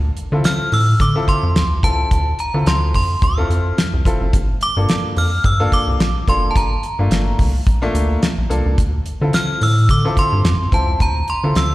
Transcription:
Already playing: D2
0.17 closed hi-hat
0.32 D3 C4 E4 F4 A4
0.44 F6, snare, closed hi-hat
0.72 A2 E6, open hi-hat
1.00 D3 D6, kick, closed hi-hat
1.15 C4 E4 F4 A4
1.28 C6, kick, closed hi-hat
1.43 F2
1.55 D2, snare, closed hi-hat
1.83 C#2 C4 E4 F4 A4 A5, kick, closed hi-hat
2.11 D2, kick, closed hi-hat
2.39 A#5, closed hi-hat
2.54 D3 C4 E4 F4 A4
2.66 D2 C6, snare, closed hi-hat
2.94 F2 C6, kick, open hi-hat
3.22 D2 F6, kick, closed hi-hat
3.37 C4 E4 F4 A4
3.50 F2, closed hi-hat
3.78 snare, closed hi-hat
3.93 C2
4.05 F1 C4 E4 F4 A4, kick, closed hi-hat
4.21 F#1
4.33 G1, kick, closed hi-hat
4.61 D6, closed hi-hat
4.77 G2 A#3 D4 F4 A4
4.89 snare, closed hi-hat
5.16 F2 F6, open hi-hat
5.44 G2 E6, kick, closed hi-hat
5.60 A#3 D4 F4 A4
5.72 D6, kick, closed hi-hat
5.87 C2
6.00 A#1, snare, closed hi-hat
6.28 F#1 A#3 D4 F4 A4 C6, kick, closed hi-hat
6.51 A5
6.56 G1 A#5, kick, closed hi-hat
6.83 closed hi-hat
6.99 G2 A3 A#3 D4 F4
7.11 G1, snare, closed hi-hat
7.39 C2, kick, open hi-hat
7.67 A#1, kick, closed hi-hat
7.82 A3 A#3 D4 F4
7.95 D2, closed hi-hat
8.22 snare, closed hi-hat
8.38 A#1
8.49 C2 A#3 D4 F4 A4, closed hi-hat
8.66 C#2
8.78 D2, kick, closed hi-hat
9.06 closed hi-hat
9.21 D3 C4 E4 F4 A4
9.33 F6, snare, closed hi-hat
9.61 A2 E6, open hi-hat
9.89 D3 D6, kick, closed hi-hat
10.05 C4 E4 F4 A4
10.17 C6, kick, closed hi-hat
10.33 G2
10.45 F2, snare, closed hi-hat
10.72 C#2 C4 E4 F4 C5 A5, kick, closed hi-hat
11.00 D2 A#5, kick, closed hi-hat
11.28 C6, closed hi-hat
11.43 D3 C4 E4 F4 A4
11.55 D2 E6, snare, closed hi-hat

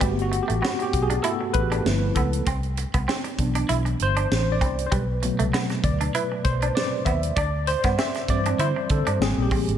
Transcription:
Already playing: B4
0.01 G1 G3 A3 B3 F#4 G4, kick, closed hi-hat
0.19 F#4, closed hi-hat
0.32 muted clean electric guitar stroke, closed hi-hat
0.43 G4
0.48 A1 A3, closed hi-hat
0.62 B3 F#4, snare
0.79 G4, muted clean electric guitar stroke, closed hi-hat
0.93 B1, kick, closed hi-hat
1.02 G#4
1.10 D4, closed hi-hat
1.23 A3 B3 E4 F#4 A4, closed hi-hat
1.41 muted clean electric guitar stroke
1.53 A1 B4, kick, closed hi-hat
1.72 D4, closed hi-hat
1.85 G1 F3 A3 B3 E4, snare
2.15 C#2 B3 A4, kick, closed hi-hat
2.33 closed hi-hat
2.46 C2 C4, kick, closed hi-hat
2.63 closed hi-hat
2.77 muted clean electric guitar stroke, closed hi-hat
2.94 C2 B3, kick, closed hi-hat
3.08 C4, snare
3.24 muted clean electric guitar stroke, closed hi-hat
3.38 B1 E3 B3 D4, kick, closed hi-hat
3.55 D4, closed hi-hat
3.69 B1 E4, closed hi-hat
3.85 muted clean electric guitar stroke, closed hi-hat
4.00 G1 C5, closed hi-hat
4.16 D4, closed hi-hat
4.31 A1, snare
4.52 D5
4.61 C2 C4, kick, closed hi-hat
4.79 closed hi-hat
4.86 C5
4.91 B1 G3 B4, kick, closed hi-hat
5.23 B2 F#3 A3, muted clean electric guitar stroke, closed hi-hat
5.39 C2 A3, closed hi-hat
5.53 B3, snare
5.69 muted clean electric guitar stroke, snare, closed hi-hat
5.84 D2 D5, kick, closed hi-hat
6.01 D4, closed hi-hat
6.15 E4 B4, closed hi-hat
6.32 muted clean electric guitar stroke
6.44 B1 C5, kick, closed hi-hat
6.62 D4, closed hi-hat
6.75 D5, snare
7.05 D#2 B3 E5, kick, closed hi-hat
7.23 closed hi-hat
7.36 D2 D4 D5, kick, closed hi-hat
7.67 C5, muted clean electric guitar stroke, closed hi-hat
7.83 G2 B3, kick, snare, closed hi-hat
7.98 C4 E5, snare
8.14 muted clean electric guitar stroke, snare, closed hi-hat
8.28 G2 E3 G3 C4 D5, kick, closed hi-hat
8.45 D4, closed hi-hat
8.59 D3 E4 C5, closed hi-hat
8.76 muted clean electric guitar stroke
8.89 D3 A4, kick, closed hi-hat
9.06 G2 D4, closed hi-hat
9.20 G#1 G3 A#3 C4 G#4, snare
9.37 A#1
9.42 G4
9.51 A1 C4, kick, open hi-hat
9.68 G#1, closed hi-hat

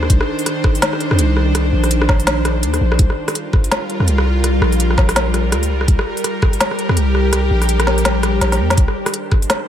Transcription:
Already playing: D#3 D4 C5
0.03 cross-stick
0.10 C2, kick, closed hi-hat
0.21 cross-stick
0.39 open hi-hat
0.46 cross-stick, closed hi-hat
0.64 kick, cross-stick
0.75 open hi-hat
0.82 snare, closed hi-hat
0.93 cross-stick
1.00 closed hi-hat
1.11 F2, cross-stick
1.19 C2, closed hi-hat
1.37 cross-stick
1.55 cross-stick, closed hi-hat
1.73 A#1
1.84 cross-stick, open hi-hat
1.91 closed hi-hat
2.02 cross-stick
2.09 kick, snare
2.20 open hi-hat
2.27 cross-stick, snare, closed hi-hat
2.45 cross-stick, closed hi-hat
2.63 D#2, closed hi-hat
2.74 cross-stick, open hi-hat
2.81 A#1
2.92 cross-stick
2.99 C2 G3 F4 A#4, kick, closed hi-hat
3.10 cross-stick
3.28 cross-stick, open hi-hat
3.35 closed hi-hat
3.53 kick, cross-stick
3.64 open hi-hat
3.72 cross-stick, snare, closed hi-hat
3.90 closed hi-hat
4.00 F2, cross-stick
4.07 C2, closed hi-hat
4.18 cross-stick
4.44 cross-stick, closed hi-hat
4.61 A#1, cross-stick
4.72 open hi-hat
4.80 closed hi-hat
4.90 cross-stick
4.98 kick, snare
5.09 cross-stick, open hi-hat
5.16 snare, closed hi-hat
5.34 cross-stick, closed hi-hat
5.52 D2, cross-stick, closed hi-hat
5.63 open hi-hat
5.70 C2
5.81 cross-stick
5.88 C2 G4, kick, closed hi-hat
5.99 cross-stick
6.17 open hi-hat
6.24 cross-stick, closed hi-hat
6.42 kick, cross-stick
6.53 open hi-hat
6.61 snare, closed hi-hat
6.71 cross-stick
6.79 closed hi-hat
6.89 F2, cross-stick
6.97 C2, closed hi-hat
7.15 cross-stick
7.33 cross-stick, closed hi-hat
7.51 A#1
7.62 cross-stick, open hi-hat
7.69 closed hi-hat
7.80 cross-stick, closed hi-hat
7.87 snare
7.98 open hi-hat
8.05 cross-stick, snare, closed hi-hat
8.23 cross-stick, closed hi-hat
8.41 A#1, snare, closed hi-hat
8.52 snare, open hi-hat
8.59 F2
8.70 snare, open hi-hat
8.77 C2 D#3 D4 C5, kick, closed hi-hat
8.88 cross-stick
9.06 cross-stick, open hi-hat
9.14 closed hi-hat
9.32 kick, cross-stick
9.42 open hi-hat
9.50 cross-stick, snare, closed hi-hat

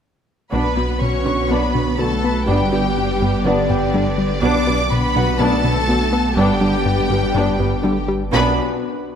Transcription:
0.51 B1 F#2 B2 D3 B3 D4 F#4 B4 B5
0.76 B1 F#3 B3 F#4
1.01 B2 C#4 C#5 C#6
1.25 B1 B2 F#3 B3 D4 C#5 C#6
1.48 B1 F#2 B2 B3 D4 B4 B5
1.74 B1 B2 F#3 B3 D4
1.98 B1 D3 F#3 A3 B3 F#4 A4 A5
2.24 B3 B4 B5
2.46 G1 G2 G3 B3 D4 G4 B4 G5
2.72 G1 G3 B3 D4
2.97 G2
3.21 G1 G2 G3 B3
3.44 G1 G2 D3 G3 B3 D4 B4 D5
3.69 G1 G2 G3 B3 G4 G5
3.94 G1 D3 G3 D4
4.18 G3
4.41 B1 F#2 B2 B3 D4 B4 D5 D6
4.67 B1 F#3 B3 F#4
4.91 B2 B3 B4 B5
5.15 B1 B2 F#3 B3 D4 F#4 F#5
5.39 B1 F#2 B2 A3 B3 D4 A4 B4 A5
5.64 B1 B2 F#3 B3 D4
5.88 B1 D3 F#3 B3 F#4
6.13 B3
6.36 G1 G2 G3 B3 D4 G4 A4 B4 G5 A5
6.61 G1 G3 B3 D4
6.86 G2
7.10 G1 G2 G3 B3
7.34 G1 G2 G3 B3 D4 B4
7.59 G1 G2 G3 B3
7.83 G1 D3 G3 D4
8.08 G3
8.32 B1 F#2 B3 D4 F#4 B4 B5

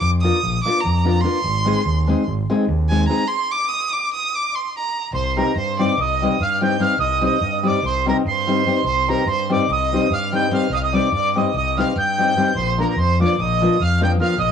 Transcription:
0.00 F2 D6
0.22 A#3 D4 F4 A#4 D#6
0.43 A#1
0.63 A#3 D4 F4 D6
0.68 A#4
0.81 A#5
0.85 F2
1.05 A#3 D4 F4 A#4
1.21 A#3 D4 F4 C6
1.26 A#4
1.44 G#1
1.65 G#3 C4 D#4 G#4
1.86 D#2
2.07 G#3 C4 D#4 G#4
2.27 G#1
2.50 G#3 C4 D#4 G#4
2.69 D#2
2.90 G#3 C4 D#4 G#4 G#5
3.08 G#3 C4 D#4 G#4 A#5
3.28 C6
3.51 D6
3.69 D#6
3.93 D6
4.13 D#6
4.35 D6
4.55 C6
4.77 A#5
5.13 C2 C5 C6
5.36 G3 C4 D#4 G4 A#4 C5 A#5
5.55 G2 C5 C6
5.79 G3 C4 D#4 G4 C5 D5 D6
5.98 C2 D#5 D#6
6.22 G3 C4 D#4 G4 C5
6.40 G2 F5 F6
6.61 G3 C4 D#4 G4 C5 G5 G6
6.79 G3 C4 D#4 G4 C5 F5 F6
6.99 C2 D#5 D#6
7.21 G3 C4 D#4 G4 C5 D#5 D#6
7.41 G2
7.63 G3 C4 D#4 G4 C5 D5 D6
7.83 C2 C5 C6
8.06 G3 C4 D#4 G4 A#4 C5 A#5
8.25 G2 C5 C6
8.47 G3 C4 D#4 G4 C5
8.66 G3 C4 D#4 G4 C5
8.84 C2 C5 C6
9.08 G3 C4 D#4 G4 A#4 C5 A#5
9.26 G2 C5 C6
9.49 G3 C4 D#4 G4 C5 D5 D6
9.69 C2 D#5 D#6
9.92 G3 C4 D#4 G4 C5
10.10 G2 F5 F6
10.32 G3 C4 D#4 G4 C5 G5 G6
10.51 G3 C4 D#4 G4 C5 F5 F6
10.70 C2 D#5
10.74 F5 D#6 F6
10.83 D#5 D#6
10.93 G3 C4 D#4 G4 C5 D5 D6
11.12 G2 D5 D6
11.35 G3 C4 D#4 G4 C5 D#5 D#6
11.54 C2 D#5 D#6
11.77 G3 C4 D#4 G4 C5 F5 F6
11.96 G2 G5 G6
12.18 G3 C4 D#4 G4 C5
12.37 G3 C4 D#4 G4 C5
12.55 A#1 C5 C6
12.78 F3 A#3 D4 F4 A#4 A#5
12.84 A#4
12.89 A#4 A#5
12.96 F2 C6
13.01 C5
13.20 F3 A#3 D4 F4 A#4 D6
13.25 D5
13.38 A#1 D#5 D#6
13.61 F3 A#3 D4 F4 A#4
13.80 F2 F5 F6
14.01 F3 A#3 D4 F4 A#4 G5 G6
14.19 F3 A#3 D4 F4 A#4 F5 F6
14.38 A#1 D#5 D#6

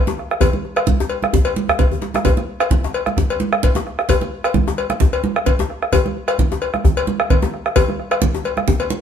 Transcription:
0.07 djembe slap, high conga, djembe tone
0.18 bombo rim, djembe slap
0.30 bombo rim, djembe slap
0.41 bombo low, cowbell, djembe bass, low conga
0.53 high conga
0.65 djembe slap
0.76 bombo rim, cowbell
0.87 bombo rim, bombo low, high conga, low conga
1.00 djembe slap, djembe tone
1.09 cowbell, djembe slap
1.23 bombo rim, high conga
1.33 bombo low, high conga, djembe bass, low conga
1.45 cowbell, djembe slap
1.56 high conga
1.69 bombo rim, high conga, djembe bass
1.79 bombo low, cowbell, djembe bass, low conga
1.91 low conga, djembe bass
2.02 djembe slap, high conga
2.14 bombo rim, djembe slap, high conga
2.25 bombo rim, bombo low, cowbell, low conga, djembe bass
2.37 bombo rim, high conga
2.60 bombo rim, cowbell, djembe slap
2.71 bombo low, high conga, low conga
2.84 djembe slap, high conga, djembe tone
2.94 cowbell
3.06 bombo rim, high conga
3.17 bombo rim, bombo low, djembe slap, low conga, djembe bass
3.30 cowbell
3.40 djembe slap, high conga
3.53 bombo rim, djembe slap
3.63 bombo low, cowbell, low conga
3.75 djembe slap, high conga, djembe tone
3.86 bombo rim, djembe slap
3.99 bombo rim, djembe slap
4.09 bombo rim, bombo low, cowbell, low conga, djembe bass
4.21 bombo rim, high conga
4.44 bombo rim, cowbell, djembe slap
4.54 bombo low, high conga, low conga
4.67 djembe slap, high conga, djembe tone
4.78 cowbell
4.90 bombo rim, high conga
5.00 bombo rim, bombo low, djembe slap, low conga, djembe bass
5.13 cowbell
5.24 djembe slap, high conga
5.36 bombo rim, djembe slap
5.46 bombo low, cowbell, low conga
5.59 djembe slap, high conga, djembe tone
5.70 bombo rim, djembe slap
5.83 bombo rim, djembe slap
5.92 bombo rim, bombo low, cowbell, low conga, djembe bass
6.06 bombo rim, high conga
6.28 bombo rim, cowbell, djembe slap
6.39 bombo low, high conga, low conga
6.51 djembe slap, high conga, djembe tone
6.62 cowbell
6.74 bombo rim, high conga
6.84 bombo rim, bombo low, djembe slap, djembe bass, low conga
6.97 cowbell
7.07 djembe slap, high conga
7.20 bombo rim, djembe slap
7.30 bombo low, cowbell, low conga
7.42 djembe slap, high conga, djembe tone
7.53 bombo rim, djembe slap
7.66 bombo rim, djembe slap
7.76 bombo low, cowbell, low conga, djembe bass
7.89 bombo rim, high conga
7.99 bombo rim
8.11 bombo rim, cowbell
8.22 bombo low, djembe slap, high conga, low conga
8.35 djembe slap, djembe tone
8.44 cowbell, high conga
8.57 bombo rim, high conga
8.68 bombo low, high conga, low conga, djembe bass
8.80 bombo rim, cowbell, high conga
8.90 djembe slap, high conga

